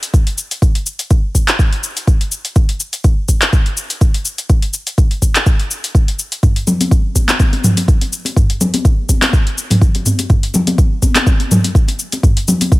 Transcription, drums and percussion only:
0.03 closed hi-hat medium
0.03 shaker soft
0.14 kick loud
0.14 shaker soft
0.27 closed hi-hat soft
0.38 shaker medium
0.51 closed hi-hat soft
0.51 shaker soft
0.62 kick loud
0.62 shaker soft
0.75 closed hi-hat soft
0.86 shaker medium
0.99 closed hi-hat medium
0.99 shaker medium
1.10 kick loud
1.10 shaker soft
1.35 kick medium
1.35 shaker medium
1.48 clap medium
1.48 closed hi-hat medium
1.48 shaker medium
1.59 kick loud
1.59 shaker soft
1.73 closed hi-hat soft
1.83 shaker medium
1.97 closed hi-hat medium
1.97 shaker medium
2.07 kick loud
2.07 shaker soft
2.21 closed hi-hat soft
2.32 shaker medium
2.45 closed hi-hat soft
2.45 shaker medium
2.56 kick loud
2.56 shaker soft
2.69 closed hi-hat soft
2.80 shaker medium
2.93 closed hi-hat medium
2.93 shaker medium
3.04 kick loud
3.04 shaker soft
3.28 kick medium
3.28 shaker medium
3.42 clap medium
3.42 closed hi-hat medium
3.42 shaker medium
3.53 kick loud
3.53 shaker soft
3.66 closed hi-hat soft
3.77 shaker medium
3.90 closed hi-hat soft
3.90 shaker medium
4.01 kick loud
4.01 shaker soft
4.14 closed hi-hat soft
4.25 shaker loud
4.38 closed hi-hat soft
4.38 shaker medium
4.49 kick loud
4.49 shaker soft
4.62 closed hi-hat soft
4.73 shaker medium
4.87 closed hi-hat medium
4.87 shaker medium
4.98 kick loud
4.98 shaker soft
5.11 closed hi-hat soft
5.22 kick medium
5.22 shaker medium
5.36 clap medium
5.36 closed hi-hat medium
5.36 shaker medium
5.46 kick loud
5.46 shaker soft
5.60 closed hi-hat soft
5.71 shaker medium
5.84 closed hi-hat medium
5.84 shaker medium
5.95 kick loud
5.95 shaker soft
6.08 closed hi-hat soft
6.19 shaker medium
6.32 closed hi-hat soft
6.32 shaker medium
6.43 kick loud
6.43 mid tom medium
6.43 shaker soft
6.56 closed hi-hat soft
6.67 muted conga soft
6.67 low conga loud
6.67 shaker medium
6.81 closed hi-hat medium
6.81 high conga medium
6.81 shaker medium
6.91 kick loud
6.91 muted conga soft
6.91 shaker soft
7.15 kick medium
7.15 muted conga soft
7.15 high conga medium
7.15 shaker medium
7.28 clap medium
7.28 closed hi-hat medium
7.28 high conga loud
7.28 shaker medium
7.40 kick loud
7.40 muted conga soft
7.40 high conga loud
7.40 shaker soft
7.53 closed hi-hat soft
7.53 high conga medium
7.64 mid tom medium
7.64 low conga medium
7.64 shaker medium
7.77 closed hi-hat medium
7.77 muted conga medium
7.77 shaker medium
7.88 kick loud
7.88 shaker soft
8.01 closed hi-hat soft
8.01 muted conga soft
8.13 shaker medium
8.25 closed hi-hat medium
8.25 muted conga soft
8.25 shaker soft
8.37 kick loud
8.37 mid tom medium
8.37 shaker soft
8.50 closed hi-hat soft
8.61 muted conga medium
8.61 low conga medium
8.61 shaker medium
8.74 closed hi-hat medium
8.74 high conga medium
8.74 shaker medium
8.85 kick loud
8.85 muted conga soft
8.85 shaker soft
9.09 kick medium
9.09 muted conga soft
9.09 high conga medium
9.09 shaker medium
9.22 clap medium
9.22 closed hi-hat medium
9.22 high conga loud
9.22 shaker medium
9.33 kick loud
9.33 muted conga soft
9.33 shaker soft
9.47 closed hi-hat soft
9.58 shaker medium
9.70 closed hi-hat medium
9.70 mid tom medium
9.70 muted conga soft
9.70 low conga medium
9.70 shaker soft
9.82 kick loud
9.82 shaker soft
9.95 closed hi-hat soft
9.95 muted conga soft
10.06 mid tom medium
10.06 high conga medium
10.06 shaker medium
10.19 closed hi-hat medium
10.19 muted conga soft
10.19 shaker soft
10.30 kick loud
10.30 mid tom medium
10.30 shaker soft
10.43 closed hi-hat soft
10.54 muted conga medium
10.54 low conga loud
10.54 shaker medium
10.67 closed hi-hat medium
10.67 high conga medium
10.67 shaker soft
10.78 kick loud
10.78 muted conga soft
10.78 shaker soft
11.02 kick medium
11.02 muted conga medium
11.02 high conga medium
11.02 shaker medium
11.15 clap medium
11.15 closed hi-hat medium
11.15 high conga medium
11.15 shaker soft
11.27 kick loud
11.27 muted conga soft
11.27 high conga loud
11.27 shaker soft
11.40 closed hi-hat soft
11.40 high conga medium
11.51 mid tom medium
11.51 low conga loud
11.51 shaker medium
11.64 closed hi-hat medium
11.64 muted conga medium
11.64 shaker soft
11.75 kick loud
11.75 shaker soft
11.88 closed hi-hat soft
11.88 muted conga soft
11.99 shaker medium
12.12 closed hi-hat medium
12.12 muted conga medium
12.12 shaker soft
12.23 kick loud
12.23 mid tom medium
12.23 shaker soft
12.37 closed hi-hat soft
12.48 muted conga medium
12.48 low conga loud
12.48 shaker medium
12.61 closed hi-hat medium
12.61 high conga medium
12.61 shaker soft
12.72 kick loud
12.72 muted conga soft
12.72 shaker soft

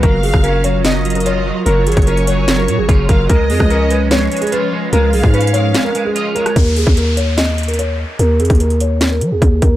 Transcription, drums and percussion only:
0.03 kick loud
0.03 closed hi-hat medium
0.23 open hi-hat medium
0.34 kick loud
0.34 cross-stick medium
0.44 closed hi-hat medium
0.64 closed hi-hat medium
0.85 snare loud
0.85 closed hi-hat medium
1.05 closed hi-hat medium
1.10 closed hi-hat medium
1.15 closed hi-hat medium
1.20 closed hi-hat medium
1.26 closed hi-hat medium
1.66 closed hi-hat medium
1.87 closed hi-hat medium
1.87 open hi-hat medium
1.92 closed hi-hat medium
1.97 kick loud
1.97 closed hi-hat soft
2.02 closed hi-hat soft
2.07 closed hi-hat medium
2.17 closed hi-hat soft
2.27 closed hi-hat medium
2.48 snare loud
2.48 closed hi-hat medium
2.68 closed hi-hat medium
2.89 kick loud
2.89 closed hi-hat medium
3.09 kick medium
3.09 closed hi-hat medium
3.29 kick loud
3.29 closed hi-hat medium
3.50 open hi-hat medium
3.60 kick loud
3.60 cross-stick medium
3.70 closed hi-hat medium
3.90 closed hi-hat medium
4.11 snare loud
4.11 closed hi-hat medium
4.32 closed hi-hat medium
4.37 closed hi-hat medium
4.42 closed hi-hat medium
4.47 closed hi-hat medium
4.52 closed hi-hat medium
4.93 closed hi-hat medium
5.13 open hi-hat medium
5.23 kick loud
5.34 closed hi-hat soft
5.41 closed hi-hat medium
5.47 closed hi-hat medium
5.54 closed hi-hat medium
5.74 snare loud
5.74 closed hi-hat medium
5.95 closed hi-hat medium
6.16 closed hi-hat medium
6.36 closed hi-hat medium
6.46 cross-stick medium
6.46 closed hi-hat medium
6.56 kick loud
6.56 closed hi-hat medium
6.76 open hi-hat medium
6.87 kick loud
6.97 closed hi-hat medium
7.17 closed hi-hat medium
7.38 snare loud
7.38 closed hi-hat medium
7.58 closed hi-hat medium
7.63 closed hi-hat medium
7.68 closed hi-hat medium
7.74 closed hi-hat medium
7.79 closed hi-hat medium
8.19 closed hi-hat medium
8.40 closed hi-hat medium
8.40 open hi-hat medium
8.45 closed hi-hat soft
8.50 kick loud
8.50 closed hi-hat soft
8.55 closed hi-hat medium
8.60 closed hi-hat medium
8.70 closed hi-hat soft
8.80 closed hi-hat medium
9.01 snare loud
9.01 closed hi-hat medium
9.21 closed hi-hat medium
9.42 kick loud
9.42 closed hi-hat medium
9.62 kick medium
9.62 closed hi-hat medium

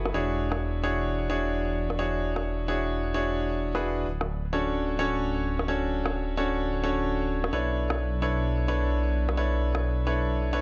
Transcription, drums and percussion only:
0.05 cross-stick soft
0.52 cross-stick medium
1.90 cross-stick soft
2.36 cross-stick medium
3.75 cross-stick soft
4.21 cross-stick medium
5.59 cross-stick soft
6.06 cross-stick soft
7.44 cross-stick soft
7.90 cross-stick medium
9.29 cross-stick soft
9.75 cross-stick medium

